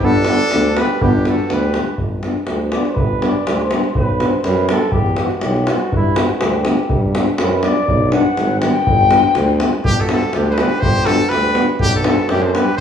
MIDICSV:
0, 0, Header, 1, 7, 480
1, 0, Start_track
1, 0, Key_signature, 1, "major"
1, 0, Tempo, 489796
1, 33, Time_signature, 2, 2, 24, 8
1, 12546, End_track
2, 0, Start_track
2, 0, Title_t, "Trumpet"
2, 0, Program_c, 0, 56
2, 47, Note_on_c, 0, 69, 127
2, 765, Note_on_c, 0, 71, 92
2, 779, Note_off_c, 0, 69, 0
2, 1001, Note_on_c, 0, 67, 104
2, 1015, Note_off_c, 0, 71, 0
2, 1240, Note_off_c, 0, 67, 0
2, 1261, Note_on_c, 0, 69, 75
2, 1503, Note_on_c, 0, 71, 84
2, 1518, Note_off_c, 0, 69, 0
2, 1864, Note_off_c, 0, 71, 0
2, 9657, Note_on_c, 0, 67, 122
2, 9807, Note_on_c, 0, 69, 82
2, 9822, Note_off_c, 0, 67, 0
2, 9899, Note_off_c, 0, 69, 0
2, 9927, Note_on_c, 0, 69, 94
2, 10152, Note_on_c, 0, 67, 78
2, 10167, Note_off_c, 0, 69, 0
2, 10268, Note_off_c, 0, 67, 0
2, 10291, Note_on_c, 0, 72, 81
2, 10304, Note_on_c, 0, 71, 77
2, 10319, Note_off_c, 0, 72, 0
2, 10325, Note_on_c, 0, 72, 72
2, 10339, Note_off_c, 0, 71, 0
2, 10370, Note_off_c, 0, 72, 0
2, 10381, Note_on_c, 0, 71, 99
2, 10590, Note_on_c, 0, 72, 122
2, 10604, Note_off_c, 0, 71, 0
2, 10835, Note_on_c, 0, 69, 106
2, 10850, Note_off_c, 0, 72, 0
2, 11066, Note_on_c, 0, 71, 109
2, 11081, Note_off_c, 0, 69, 0
2, 11444, Note_off_c, 0, 71, 0
2, 11568, Note_on_c, 0, 67, 127
2, 11686, Note_off_c, 0, 67, 0
2, 11718, Note_on_c, 0, 69, 97
2, 11806, Note_off_c, 0, 69, 0
2, 11832, Note_on_c, 0, 69, 92
2, 12053, Note_on_c, 0, 67, 99
2, 12067, Note_off_c, 0, 69, 0
2, 12184, Note_on_c, 0, 72, 73
2, 12198, Note_off_c, 0, 67, 0
2, 12283, Note_on_c, 0, 71, 91
2, 12298, Note_off_c, 0, 72, 0
2, 12511, Note_off_c, 0, 71, 0
2, 12546, End_track
3, 0, Start_track
3, 0, Title_t, "Flugelhorn"
3, 0, Program_c, 1, 56
3, 29, Note_on_c, 1, 62, 123
3, 774, Note_on_c, 1, 67, 88
3, 789, Note_off_c, 1, 62, 0
3, 1010, Note_on_c, 1, 62, 87
3, 1025, Note_off_c, 1, 67, 0
3, 1245, Note_off_c, 1, 62, 0
3, 1265, Note_on_c, 1, 66, 72
3, 1523, Note_on_c, 1, 67, 84
3, 1538, Note_off_c, 1, 66, 0
3, 1874, Note_off_c, 1, 67, 0
3, 2663, Note_on_c, 1, 74, 79
3, 2837, Note_on_c, 1, 72, 67
3, 2852, Note_off_c, 1, 74, 0
3, 2880, Note_on_c, 1, 71, 97
3, 2895, Note_off_c, 1, 72, 0
3, 3224, Note_on_c, 1, 74, 83
3, 3239, Note_off_c, 1, 71, 0
3, 3493, Note_off_c, 1, 74, 0
3, 3493, Note_on_c, 1, 74, 74
3, 3541, Note_on_c, 1, 72, 86
3, 3556, Note_off_c, 1, 74, 0
3, 3848, Note_off_c, 1, 72, 0
3, 3854, Note_on_c, 1, 71, 92
3, 4183, Note_on_c, 1, 72, 76
3, 4198, Note_off_c, 1, 71, 0
3, 4341, Note_on_c, 1, 71, 100
3, 4355, Note_off_c, 1, 72, 0
3, 4594, Note_off_c, 1, 71, 0
3, 4600, Note_on_c, 1, 69, 101
3, 4817, Note_on_c, 1, 67, 97
3, 4831, Note_off_c, 1, 69, 0
3, 5153, Note_on_c, 1, 66, 76
3, 5168, Note_off_c, 1, 67, 0
3, 5328, Note_on_c, 1, 67, 84
3, 5343, Note_off_c, 1, 66, 0
3, 5569, Note_on_c, 1, 66, 80
3, 5584, Note_off_c, 1, 67, 0
3, 5808, Note_off_c, 1, 66, 0
3, 5837, Note_on_c, 1, 64, 99
3, 6062, Note_on_c, 1, 66, 75
3, 6077, Note_off_c, 1, 64, 0
3, 6336, Note_on_c, 1, 67, 78
3, 6350, Note_off_c, 1, 66, 0
3, 7031, Note_off_c, 1, 67, 0
3, 7242, Note_on_c, 1, 71, 74
3, 7467, Note_off_c, 1, 71, 0
3, 7481, Note_on_c, 1, 74, 101
3, 7966, Note_on_c, 1, 78, 97
3, 7981, Note_off_c, 1, 74, 0
3, 8421, Note_off_c, 1, 78, 0
3, 8427, Note_on_c, 1, 79, 127
3, 9594, Note_off_c, 1, 79, 0
3, 9662, Note_on_c, 1, 62, 81
3, 9797, Note_on_c, 1, 66, 85
3, 9812, Note_off_c, 1, 62, 0
3, 9894, Note_off_c, 1, 66, 0
3, 9902, Note_on_c, 1, 66, 68
3, 10141, Note_on_c, 1, 62, 77
3, 10156, Note_off_c, 1, 66, 0
3, 10263, Note_off_c, 1, 62, 0
3, 10285, Note_on_c, 1, 69, 68
3, 10303, Note_off_c, 1, 69, 0
3, 10354, Note_on_c, 1, 69, 62
3, 10374, Note_off_c, 1, 69, 0
3, 10379, Note_on_c, 1, 67, 90
3, 10606, Note_off_c, 1, 67, 0
3, 10606, Note_on_c, 1, 67, 110
3, 10840, Note_on_c, 1, 66, 89
3, 10855, Note_off_c, 1, 67, 0
3, 11081, Note_on_c, 1, 67, 78
3, 11095, Note_off_c, 1, 66, 0
3, 11451, Note_off_c, 1, 67, 0
3, 11566, Note_on_c, 1, 62, 88
3, 11685, Note_off_c, 1, 62, 0
3, 11703, Note_on_c, 1, 66, 65
3, 11798, Note_off_c, 1, 66, 0
3, 11816, Note_on_c, 1, 66, 67
3, 12054, Note_on_c, 1, 62, 84
3, 12068, Note_off_c, 1, 66, 0
3, 12197, Note_on_c, 1, 69, 72
3, 12212, Note_off_c, 1, 62, 0
3, 12274, Note_on_c, 1, 67, 83
3, 12289, Note_off_c, 1, 69, 0
3, 12508, Note_off_c, 1, 67, 0
3, 12514, Note_on_c, 1, 67, 98
3, 12546, Note_off_c, 1, 67, 0
3, 12546, End_track
4, 0, Start_track
4, 0, Title_t, "Euphonium"
4, 0, Program_c, 2, 58
4, 24, Note_on_c, 2, 62, 93
4, 123, Note_off_c, 2, 62, 0
4, 258, Note_on_c, 2, 62, 78
4, 358, Note_off_c, 2, 62, 0
4, 512, Note_on_c, 2, 62, 65
4, 609, Note_off_c, 2, 62, 0
4, 735, Note_on_c, 2, 62, 66
4, 836, Note_off_c, 2, 62, 0
4, 1004, Note_on_c, 2, 62, 78
4, 1099, Note_off_c, 2, 62, 0
4, 1244, Note_on_c, 2, 62, 78
4, 1339, Note_off_c, 2, 62, 0
4, 1476, Note_on_c, 2, 62, 60
4, 1573, Note_off_c, 2, 62, 0
4, 1729, Note_on_c, 2, 62, 47
4, 1824, Note_off_c, 2, 62, 0
4, 2215, Note_on_c, 2, 62, 61
4, 2308, Note_off_c, 2, 62, 0
4, 2679, Note_on_c, 2, 62, 67
4, 2776, Note_off_c, 2, 62, 0
4, 3149, Note_on_c, 2, 62, 77
4, 3248, Note_off_c, 2, 62, 0
4, 3632, Note_on_c, 2, 62, 67
4, 3731, Note_off_c, 2, 62, 0
4, 4136, Note_on_c, 2, 62, 73
4, 4230, Note_off_c, 2, 62, 0
4, 4602, Note_on_c, 2, 62, 63
4, 4699, Note_off_c, 2, 62, 0
4, 5092, Note_on_c, 2, 64, 69
4, 5187, Note_off_c, 2, 64, 0
4, 5559, Note_on_c, 2, 64, 53
4, 5656, Note_off_c, 2, 64, 0
4, 6041, Note_on_c, 2, 62, 65
4, 6138, Note_off_c, 2, 62, 0
4, 6521, Note_on_c, 2, 62, 63
4, 6618, Note_off_c, 2, 62, 0
4, 7017, Note_on_c, 2, 62, 77
4, 7111, Note_off_c, 2, 62, 0
4, 7479, Note_on_c, 2, 62, 71
4, 7576, Note_off_c, 2, 62, 0
4, 7954, Note_on_c, 2, 62, 92
4, 8052, Note_off_c, 2, 62, 0
4, 8446, Note_on_c, 2, 62, 63
4, 8542, Note_off_c, 2, 62, 0
4, 8931, Note_on_c, 2, 62, 77
4, 9026, Note_off_c, 2, 62, 0
4, 9402, Note_on_c, 2, 62, 65
4, 9498, Note_off_c, 2, 62, 0
4, 9886, Note_on_c, 2, 62, 71
4, 9981, Note_off_c, 2, 62, 0
4, 10387, Note_on_c, 2, 62, 63
4, 10477, Note_off_c, 2, 62, 0
4, 10865, Note_on_c, 2, 62, 81
4, 10956, Note_off_c, 2, 62, 0
4, 11312, Note_on_c, 2, 62, 72
4, 11410, Note_off_c, 2, 62, 0
4, 11796, Note_on_c, 2, 62, 84
4, 11893, Note_off_c, 2, 62, 0
4, 12298, Note_on_c, 2, 62, 65
4, 12390, Note_off_c, 2, 62, 0
4, 12546, End_track
5, 0, Start_track
5, 0, Title_t, "Trombone"
5, 0, Program_c, 3, 57
5, 18, Note_on_c, 3, 59, 91
5, 118, Note_off_c, 3, 59, 0
5, 271, Note_on_c, 3, 59, 77
5, 368, Note_off_c, 3, 59, 0
5, 499, Note_on_c, 3, 59, 68
5, 599, Note_off_c, 3, 59, 0
5, 751, Note_on_c, 3, 59, 64
5, 848, Note_off_c, 3, 59, 0
5, 988, Note_on_c, 3, 59, 90
5, 1086, Note_off_c, 3, 59, 0
5, 1226, Note_on_c, 3, 59, 76
5, 1325, Note_off_c, 3, 59, 0
5, 1464, Note_on_c, 3, 59, 58
5, 1564, Note_off_c, 3, 59, 0
5, 1706, Note_on_c, 3, 59, 53
5, 1805, Note_off_c, 3, 59, 0
5, 2189, Note_on_c, 3, 59, 50
5, 2288, Note_off_c, 3, 59, 0
5, 2680, Note_on_c, 3, 59, 66
5, 2777, Note_off_c, 3, 59, 0
5, 3151, Note_on_c, 3, 59, 68
5, 3250, Note_off_c, 3, 59, 0
5, 3650, Note_on_c, 3, 59, 64
5, 3745, Note_off_c, 3, 59, 0
5, 4121, Note_on_c, 3, 59, 68
5, 4218, Note_off_c, 3, 59, 0
5, 4594, Note_on_c, 3, 59, 66
5, 4692, Note_off_c, 3, 59, 0
5, 5086, Note_on_c, 3, 59, 60
5, 5182, Note_off_c, 3, 59, 0
5, 5565, Note_on_c, 3, 59, 60
5, 5662, Note_off_c, 3, 59, 0
5, 6040, Note_on_c, 3, 59, 59
5, 6137, Note_off_c, 3, 59, 0
5, 6529, Note_on_c, 3, 59, 67
5, 6624, Note_off_c, 3, 59, 0
5, 7013, Note_on_c, 3, 59, 72
5, 7108, Note_off_c, 3, 59, 0
5, 7471, Note_on_c, 3, 59, 66
5, 7570, Note_off_c, 3, 59, 0
5, 7964, Note_on_c, 3, 59, 62
5, 8060, Note_off_c, 3, 59, 0
5, 8460, Note_on_c, 3, 59, 72
5, 8552, Note_off_c, 3, 59, 0
5, 8931, Note_on_c, 3, 59, 76
5, 9025, Note_off_c, 3, 59, 0
5, 9412, Note_on_c, 3, 59, 72
5, 9506, Note_off_c, 3, 59, 0
5, 9901, Note_on_c, 3, 59, 70
5, 9993, Note_off_c, 3, 59, 0
5, 10384, Note_on_c, 3, 59, 61
5, 10475, Note_off_c, 3, 59, 0
5, 10862, Note_on_c, 3, 59, 71
5, 10954, Note_off_c, 3, 59, 0
5, 11324, Note_on_c, 3, 59, 82
5, 11419, Note_off_c, 3, 59, 0
5, 11794, Note_on_c, 3, 59, 76
5, 11891, Note_off_c, 3, 59, 0
5, 12283, Note_on_c, 3, 59, 67
5, 12378, Note_off_c, 3, 59, 0
5, 12546, End_track
6, 0, Start_track
6, 0, Title_t, "Tuba"
6, 0, Program_c, 4, 58
6, 45, Note_on_c, 4, 31, 102
6, 307, Note_off_c, 4, 31, 0
6, 523, Note_on_c, 4, 38, 105
6, 786, Note_off_c, 4, 38, 0
6, 1003, Note_on_c, 4, 31, 116
6, 1266, Note_off_c, 4, 31, 0
6, 1478, Note_on_c, 4, 38, 104
6, 1743, Note_off_c, 4, 38, 0
6, 1956, Note_on_c, 4, 31, 72
6, 2222, Note_off_c, 4, 31, 0
6, 2436, Note_on_c, 4, 38, 94
6, 2703, Note_off_c, 4, 38, 0
6, 2929, Note_on_c, 4, 31, 85
6, 3192, Note_off_c, 4, 31, 0
6, 3408, Note_on_c, 4, 38, 88
6, 3672, Note_off_c, 4, 38, 0
6, 3892, Note_on_c, 4, 35, 84
6, 4155, Note_off_c, 4, 35, 0
6, 4360, Note_on_c, 4, 42, 114
6, 4626, Note_off_c, 4, 42, 0
6, 4848, Note_on_c, 4, 40, 86
6, 5112, Note_off_c, 4, 40, 0
6, 5327, Note_on_c, 4, 35, 102
6, 5591, Note_off_c, 4, 35, 0
6, 5803, Note_on_c, 4, 43, 84
6, 6068, Note_off_c, 4, 43, 0
6, 6293, Note_on_c, 4, 38, 93
6, 6555, Note_off_c, 4, 38, 0
6, 6770, Note_on_c, 4, 43, 93
6, 7033, Note_off_c, 4, 43, 0
6, 7253, Note_on_c, 4, 42, 103
6, 7515, Note_off_c, 4, 42, 0
6, 7728, Note_on_c, 4, 35, 108
6, 7991, Note_off_c, 4, 35, 0
6, 8212, Note_on_c, 4, 32, 104
6, 8474, Note_off_c, 4, 32, 0
6, 8694, Note_on_c, 4, 31, 97
6, 8955, Note_off_c, 4, 31, 0
6, 9174, Note_on_c, 4, 38, 111
6, 9435, Note_off_c, 4, 38, 0
6, 9667, Note_on_c, 4, 31, 87
6, 9924, Note_off_c, 4, 31, 0
6, 10139, Note_on_c, 4, 38, 110
6, 10398, Note_off_c, 4, 38, 0
6, 10625, Note_on_c, 4, 31, 84
6, 10882, Note_off_c, 4, 31, 0
6, 11107, Note_on_c, 4, 38, 87
6, 11363, Note_off_c, 4, 38, 0
6, 11584, Note_on_c, 4, 35, 90
6, 11841, Note_off_c, 4, 35, 0
6, 12060, Note_on_c, 4, 42, 113
6, 12317, Note_off_c, 4, 42, 0
6, 12546, End_track
7, 0, Start_track
7, 0, Title_t, "Davul"
7, 2, Note_on_c, 9, 43, 84
7, 100, Note_off_c, 9, 43, 0
7, 147, Note_on_c, 9, 37, 23
7, 241, Note_off_c, 9, 37, 0
7, 241, Note_on_c, 9, 37, 70
7, 339, Note_off_c, 9, 37, 0
7, 500, Note_on_c, 9, 37, 67
7, 598, Note_off_c, 9, 37, 0
7, 750, Note_on_c, 9, 37, 69
7, 848, Note_off_c, 9, 37, 0
7, 994, Note_on_c, 9, 43, 101
7, 1092, Note_off_c, 9, 43, 0
7, 1229, Note_on_c, 9, 37, 63
7, 1327, Note_off_c, 9, 37, 0
7, 1361, Note_on_c, 9, 37, 25
7, 1459, Note_off_c, 9, 37, 0
7, 1471, Note_on_c, 9, 37, 67
7, 1569, Note_off_c, 9, 37, 0
7, 1604, Note_on_c, 9, 37, 24
7, 1702, Note_off_c, 9, 37, 0
7, 1704, Note_on_c, 9, 37, 69
7, 1802, Note_off_c, 9, 37, 0
7, 1941, Note_on_c, 9, 43, 79
7, 2039, Note_off_c, 9, 43, 0
7, 2183, Note_on_c, 9, 37, 58
7, 2281, Note_off_c, 9, 37, 0
7, 2417, Note_on_c, 9, 37, 69
7, 2515, Note_off_c, 9, 37, 0
7, 2664, Note_on_c, 9, 37, 69
7, 2762, Note_off_c, 9, 37, 0
7, 2796, Note_on_c, 9, 37, 27
7, 2894, Note_off_c, 9, 37, 0
7, 2906, Note_on_c, 9, 43, 103
7, 3004, Note_off_c, 9, 43, 0
7, 3157, Note_on_c, 9, 37, 68
7, 3255, Note_off_c, 9, 37, 0
7, 3399, Note_on_c, 9, 37, 86
7, 3497, Note_off_c, 9, 37, 0
7, 3633, Note_on_c, 9, 37, 78
7, 3731, Note_off_c, 9, 37, 0
7, 3761, Note_on_c, 9, 37, 25
7, 3859, Note_off_c, 9, 37, 0
7, 3872, Note_on_c, 9, 43, 106
7, 3970, Note_off_c, 9, 43, 0
7, 4119, Note_on_c, 9, 37, 68
7, 4217, Note_off_c, 9, 37, 0
7, 4353, Note_on_c, 9, 37, 67
7, 4451, Note_off_c, 9, 37, 0
7, 4593, Note_on_c, 9, 37, 81
7, 4691, Note_off_c, 9, 37, 0
7, 4729, Note_on_c, 9, 37, 24
7, 4821, Note_on_c, 9, 43, 105
7, 4827, Note_off_c, 9, 37, 0
7, 4919, Note_off_c, 9, 43, 0
7, 4960, Note_on_c, 9, 37, 22
7, 5058, Note_off_c, 9, 37, 0
7, 5062, Note_on_c, 9, 37, 74
7, 5160, Note_off_c, 9, 37, 0
7, 5200, Note_on_c, 9, 37, 28
7, 5298, Note_off_c, 9, 37, 0
7, 5306, Note_on_c, 9, 37, 76
7, 5404, Note_off_c, 9, 37, 0
7, 5452, Note_on_c, 9, 37, 34
7, 5550, Note_off_c, 9, 37, 0
7, 5555, Note_on_c, 9, 37, 80
7, 5653, Note_off_c, 9, 37, 0
7, 5806, Note_on_c, 9, 43, 93
7, 5904, Note_off_c, 9, 43, 0
7, 6039, Note_on_c, 9, 37, 84
7, 6137, Note_off_c, 9, 37, 0
7, 6279, Note_on_c, 9, 37, 86
7, 6377, Note_off_c, 9, 37, 0
7, 6514, Note_on_c, 9, 37, 80
7, 6612, Note_off_c, 9, 37, 0
7, 6654, Note_on_c, 9, 37, 21
7, 6752, Note_off_c, 9, 37, 0
7, 6758, Note_on_c, 9, 43, 100
7, 6856, Note_off_c, 9, 43, 0
7, 7005, Note_on_c, 9, 37, 77
7, 7103, Note_off_c, 9, 37, 0
7, 7235, Note_on_c, 9, 37, 84
7, 7333, Note_off_c, 9, 37, 0
7, 7475, Note_on_c, 9, 37, 70
7, 7573, Note_off_c, 9, 37, 0
7, 7612, Note_on_c, 9, 37, 26
7, 7710, Note_off_c, 9, 37, 0
7, 7726, Note_on_c, 9, 43, 91
7, 7824, Note_off_c, 9, 43, 0
7, 7957, Note_on_c, 9, 37, 67
7, 8055, Note_off_c, 9, 37, 0
7, 8206, Note_on_c, 9, 37, 68
7, 8304, Note_off_c, 9, 37, 0
7, 8444, Note_on_c, 9, 37, 75
7, 8542, Note_off_c, 9, 37, 0
7, 8588, Note_on_c, 9, 37, 28
7, 8686, Note_off_c, 9, 37, 0
7, 8692, Note_on_c, 9, 43, 113
7, 8790, Note_off_c, 9, 43, 0
7, 8826, Note_on_c, 9, 37, 23
7, 8924, Note_off_c, 9, 37, 0
7, 8924, Note_on_c, 9, 37, 75
7, 9022, Note_off_c, 9, 37, 0
7, 9052, Note_on_c, 9, 37, 25
7, 9150, Note_off_c, 9, 37, 0
7, 9164, Note_on_c, 9, 37, 68
7, 9262, Note_off_c, 9, 37, 0
7, 9407, Note_on_c, 9, 37, 76
7, 9505, Note_off_c, 9, 37, 0
7, 9649, Note_on_c, 9, 43, 109
7, 9747, Note_off_c, 9, 43, 0
7, 9886, Note_on_c, 9, 37, 72
7, 9984, Note_off_c, 9, 37, 0
7, 10125, Note_on_c, 9, 37, 71
7, 10223, Note_off_c, 9, 37, 0
7, 10365, Note_on_c, 9, 37, 78
7, 10463, Note_off_c, 9, 37, 0
7, 10503, Note_on_c, 9, 37, 25
7, 10601, Note_off_c, 9, 37, 0
7, 10609, Note_on_c, 9, 43, 103
7, 10707, Note_off_c, 9, 43, 0
7, 10844, Note_on_c, 9, 37, 75
7, 10942, Note_off_c, 9, 37, 0
7, 11088, Note_on_c, 9, 37, 64
7, 11186, Note_off_c, 9, 37, 0
7, 11319, Note_on_c, 9, 37, 67
7, 11417, Note_off_c, 9, 37, 0
7, 11460, Note_on_c, 9, 37, 24
7, 11558, Note_off_c, 9, 37, 0
7, 11560, Note_on_c, 9, 43, 103
7, 11658, Note_off_c, 9, 43, 0
7, 11803, Note_on_c, 9, 37, 75
7, 11901, Note_off_c, 9, 37, 0
7, 12044, Note_on_c, 9, 37, 76
7, 12142, Note_off_c, 9, 37, 0
7, 12297, Note_on_c, 9, 37, 75
7, 12395, Note_off_c, 9, 37, 0
7, 12436, Note_on_c, 9, 37, 24
7, 12534, Note_off_c, 9, 37, 0
7, 12546, End_track
0, 0, End_of_file